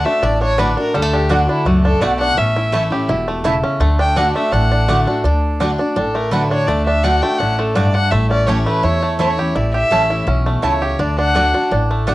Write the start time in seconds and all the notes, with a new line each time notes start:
Already playing: D4
0.05 A3 D4 F#4 E5
0.22 A1 A2 D4 D5
0.41 D4 C#5
0.58 D3 A3 D4 F#4 B4 D5 F#5
0.77 D4 F#4 A#4
0.94 D2 D3 G3 A4
1.02 A3
1.13 D4 G4
1.29 D3 A3 D4 F#4 D5 F#5
1.49 D4 E4
1.65 C#2 F#2 A3 F#4
1.85 D4 A4
2.01 B1 B2 A3 F#4 D5 F#5
2.20 D4 F#5
2.37 A1 A2 C#4 E5
2.56 E4
2.72 E3 A3 C#4 E4 C#5 A5
2.91 C#4 E4 G4
3.08 E1 B2 E4
3.28 A3
3.44 C#3 A3 E4 C#5 A5
3.64 C#4
3.80 D2 D3 A3
3.99 D4 G5
4.16 D3 A3 D4 F#4 D5 F#5
4.35 A3 D4 F#4 E5
4.52 A1 A2 D4 F#5
4.72 D4
4.88 D3 A3 D4 F#4 D5 F#5
5.07 D4 F#4
5.24 D2 D3 D4
5.60 D3 A3 D4 F#4 D5 F#5
5.78 D4 F#4
5.96 A1 A2 D4 A4
6.15 A3 A#4
6.31 D3 A3 D4 F#4 B4 D5 F#5
6.51 D4 C#5
6.67 D2 D3 A3 D5
6.86 D4 E5
7.03 D3 A3 D4 F#4 D5 F#5
7.22 A3 D4 F#4 G5
7.38 A1 C#4 D4 F#5
7.58 A3 A4
7.75 G2 A3 D4 F#4 D5 F#5
7.94 D4 F#5
8.11 A1 A2 A3 E5
8.30 C#4 D5
8.47 E3 A3 C#4 E4 G4 C#5 A5
8.66 A3 B4
8.83 E2 E4 C#5
9.03 A3
9.19 E3 A3 C#4 E4 C#5 A5
9.38 C#4 E4 G4
9.55 A1 A2 E4 D5
9.74 G4 E5
9.91 A1 E3 A3 C#4 E4 C#5 A5
10.10 E4
10.27 B1 B2 C#4
10.46 A3
10.62 C#2 C#3 A3 E4 C#5 A5
10.82 G4
10.99 D2 D3 D4 D5
11.19 D4 F#5
11.35 D3 A3 D4 F#4 D5 F#5
11.54 D4 F#4
11.71 A1 A2 D4
11.91 A3
12.07 D3 A3 D4 F#4 D5 F#5